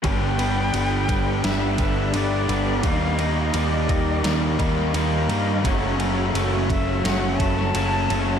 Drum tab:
RD |x-x-x-x-x-x-x-x-|x-x-x-x-x-x-x-x-|x-x-x-x-x-x-x-x-|
SD |--------o-------|--------o--o----|--------o--o----|
BD |o-----o---o-----|o-----o---o-----|o-----o---o-----|